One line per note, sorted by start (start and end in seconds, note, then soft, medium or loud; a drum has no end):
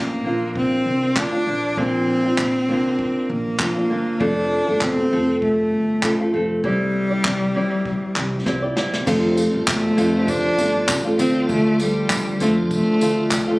0.00 0.20 A1 medium
0.00 0.56 A#3 medium
0.00 0.25 C4 soft
0.00 0.24 D4 soft
0.00 0.25 F4 soft
0.24 0.75 A#1 medium
0.24 1.14 A#3 medium
0.24 1.17 C4 medium
0.24 1.15 D4 medium
0.24 1.18 F4 medium
0.56 1.19 C4 medium
0.56 kick loud
0.86 1.11 C2 medium
1.16 1.41 D2 medium
1.16 1.33 A#3 medium
1.16 1.33 C4 medium
1.16 1.33 D4 medium
1.16 1.79 D4 medium
1.16 1.31 F4 medium
1.16 kick loud
1.16 clap medium
1.32 1.47 C4 soft
1.32 1.46 D4 soft
1.32 1.46 F4 soft
1.46 1.72 A#1 medium
1.46 1.77 A#3 medium
1.46 1.77 C4 medium
1.46 1.77 D4 medium
1.46 1.78 F4 medium
1.77 2.27 A#1 medium
1.77 2.24 A#2 medium
1.77 2.25 A#3 medium
1.77 3.32 C4 medium
1.77 2.25 C4 medium
1.77 2.25 D4 medium
1.77 2.23 F4 medium
1.77 kick medium
2.24 2.69 C4 soft
2.24 2.68 D4 soft
2.24 2.68 F4 soft
2.38 2.63 A#2 medium
2.38 kick loud
2.38 clap loud
2.69 3.07 C2 medium
2.69 3.58 A#3 medium
2.69 3.61 C4 medium
2.69 3.59 D4 medium
2.69 3.61 F4 medium
2.99 kick loud
3.30 3.54 A#1 medium
3.30 4.22 A#3 medium
3.59 3.91 A#1 medium
3.59 3.76 A#3 medium
3.59 3.76 C4 medium
3.59 3.77 D4 medium
3.59 3.75 F4 medium
3.59 kick loud
3.59 clap medium
3.76 3.90 C4 soft
3.76 3.89 D4 soft
3.76 3.90 F4 medium
3.90 4.15 G1 medium
3.90 4.20 A#3 medium
3.90 4.19 C4 medium
3.90 4.20 D4 medium
3.90 4.20 F4 medium
4.20 4.59 F1 medium
4.20 4.67 F2 medium
4.20 4.67 F3 medium
4.20 4.68 A3 medium
4.20 4.67 C4 medium
4.20 4.84 D4 medium
4.20 4.66 F4 medium
4.20 4.66 A4 medium
4.20 kick loud
4.67 4.79 G1 medium
4.67 5.10 A3 soft
4.67 5.11 C4 soft
4.67 5.12 F4 soft
4.67 5.11 A4 soft
4.81 5.06 E1 medium
4.81 5.42 C4 medium
4.81 kick loud
4.81 clap loud
5.11 5.73 F1 medium
5.11 6.01 A3 medium
5.11 6.03 C4 medium
5.11 6.03 F4 medium
5.11 6.04 A4 medium
5.42 6.30 A3 medium
5.42 kick medium
5.73 5.98 G1 medium
6.02 6.28 A1 medium
6.02 6.19 A3 medium
6.02 6.20 C4 medium
6.02 6.19 F4 medium
6.02 6.18 A4 medium
6.02 kick loud
6.02 clap medium
6.19 6.32 A3 soft
6.19 6.33 C4 medium
6.19 6.33 F4 medium
6.19 6.33 A4 medium
6.33 6.58 F1 medium
6.33 6.63 A3 medium
6.33 6.62 C4 medium
6.33 6.64 F4 medium
6.33 6.65 A4 medium
6.64 7.14 C2 medium
6.64 8.42 G3 loud
6.64 7.11 C4 medium
6.64 7.11 E4 medium
6.64 7.11 G4 medium
6.64 7.09 D5 medium
6.64 kick loud
7.10 7.54 E4 soft
7.10 7.55 G4 soft
7.10 7.55 D5 soft
7.25 7.50 C3 loud
7.25 kick loud
7.25 clap medium
7.54 7.94 D2 medium
7.54 8.45 C4 medium
7.54 8.45 E4 medium
7.54 8.46 G4 medium
7.54 8.48 D5 medium
7.85 kick medium
8.16 8.41 C2 medium
8.16 clap medium
8.45 8.71 C2 medium
8.45 8.62 C4 medium
8.45 8.63 E4 medium
8.45 8.62 G4 medium
8.45 8.61 D5 medium
8.45 kick loud
8.45 snare medium
8.62 8.75 E4 soft
8.62 8.76 G4 soft
8.62 8.76 D5 medium
8.76 9.02 G1 medium
8.76 9.06 C4 medium
8.76 9.07 E4 medium
8.76 9.07 G4 medium
8.76 9.07 D5 medium
8.76 snare medium
8.94 snare medium
9.06 9.46 F1 loud
9.06 9.37 F2 medium
9.06 9.37 D3 medium
9.06 9.35 F3 medium
9.06 9.36 A3 medium
9.06 9.37 C4 medium
9.06 11.17 F4 medium
9.06 9.38 F4 medium
9.06 13.59 D5 medium
9.06 13.59 A5 medium
9.06 13.59 C6 medium
9.06 kick loud
9.06 crash medium
9.06 tambourine soft
9.36 9.97 F3 medium
9.36 9.97 A3 medium
9.36 9.98 C4 medium
9.36 9.98 F4 medium
9.36 tambourine medium
9.36 tambourine soft
9.54 9.65 G1 medium
9.67 9.93 E1 medium
9.67 10.30 A3 medium
9.67 kick loud
9.67 clap loud
9.67 tambourine medium
9.97 10.47 F1 medium
9.97 10.58 F2 medium
9.97 10.63 D3 medium
9.97 10.58 F3 medium
9.97 10.58 A3 medium
9.97 10.59 C4 medium
9.97 10.60 F4 medium
9.97 tambourine medium
9.97 tambourine soft
10.28 10.89 D4 loud
10.28 kick loud
10.28 tambourine soft
10.58 10.83 G1 loud
10.58 11.05 F3 medium
10.58 11.05 A3 medium
10.58 11.05 C4 medium
10.58 11.03 F4 medium
10.58 tambourine medium
10.89 11.14 A1 medium
10.89 kick loud
10.89 clap loud
10.89 tambourine medium
11.05 11.18 F3 soft
11.05 11.18 A3 soft
11.05 11.18 C4 soft
11.05 11.19 F4 medium
11.18 11.44 D2 medium
11.18 11.79 D3 medium
11.18 11.78 F3 medium
11.18 11.79 A3 medium
11.18 11.47 C4 medium
11.18 11.80 C4 medium
11.18 13.59 F4 medium
11.18 11.80 F4 medium
11.18 tambourine medium
11.18 tambourine soft
11.49 11.99 D2 loud
11.49 11.82 A3 loud
11.49 kick loud
11.49 tambourine soft
11.79 12.39 F3 medium
11.79 12.41 G3 medium
11.79 12.39 A3 medium
11.79 12.40 C4 medium
11.79 12.40 F4 medium
11.79 tambourine soft
11.79 tambourine medium
12.10 12.42 D3 loud
12.10 kick loud
12.10 clap loud
12.10 tambourine medium
12.40 12.79 F2 medium
12.40 13.01 D3 medium
12.40 12.99 F3 medium
12.40 13.00 A3 medium
12.40 12.55 A3 medium
12.40 13.02 C4 medium
12.40 13.02 F4 medium
12.40 tambourine medium
12.40 tambourine soft
12.71 13.59 A3 medium
12.71 kick loud
12.71 tambourine soft
13.01 13.26 D2 loud
13.01 13.48 F3 medium
13.01 13.48 A3 medium
13.01 13.48 C4 medium
13.01 13.46 F4 medium
13.01 tambourine medium
13.31 13.56 D2 medium
13.31 kick loud
13.31 clap loud
13.31 tambourine medium
13.48 13.59 A3 medium
13.48 13.59 C4 medium
13.48 13.59 F4 medium